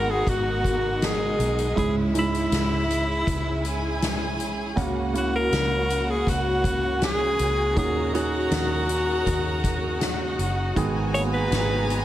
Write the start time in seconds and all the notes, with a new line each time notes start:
Already playing: G#1 G#2 D#3 G#3 B3 D#4 F#4 A#4 F#5
0.10 G#4
0.27 G#1 F#4, kick, closed hi-hat
0.64 kick, closed hi-hat
1.02 D#4 G#4 D#5, snare, closed hi-hat
1.39 B1, closed hi-hat
1.58 closed hi-hat
1.76 C#2 G#2 G#3 C#4 E4 G#4 E5, kick, closed hi-hat
2.14 G#3 C#4 D#4, closed hi-hat
2.19 E4
2.34 closed hi-hat
2.52 C#2, snare, closed hi-hat
2.90 closed hi-hat
3.27 C#2, kick, closed hi-hat
3.65 G#4 G#5, closed hi-hat
4.02 snare, closed hi-hat
4.40 B1, closed hi-hat
4.76 C#2 C#3 A#3 C#4 F#4 F#5, kick, closed hi-hat
5.13 A#3 C#4 E4, closed hi-hat
5.17 F#4
5.36 A#4
5.52 C#2, snare, closed hi-hat
5.90 closed hi-hat
6.10 G#4
6.27 C#2 F#4, kick, closed hi-hat
6.64 kick, closed hi-hat
7.01 G#4 G#5, snare, closed hi-hat
7.39 C#2, closed hi-hat
7.75 D#2 A#2 C#4 D#4 F#4 G#4 A#4 A#5, kick, closed hi-hat
8.14 C#4 D#4 F#4 G#4, closed hi-hat
8.51 D#2, snare, closed hi-hat
8.89 closed hi-hat
9.26 D#2, kick, closed hi-hat
9.64 kick, closed hi-hat
10.00 F#4 F#5, snare, closed hi-hat
10.38 F#1, closed hi-hat
10.76 G#1 G#2 D#3 G#3 B3 F#4 G#4 G#5 A#5, kick, closed hi-hat
11.14 A#3 F#4 G#4 C#5, closed hi-hat
11.20 B3
11.34 B4
11.51 G#1, snare, closed hi-hat
11.90 closed hi-hat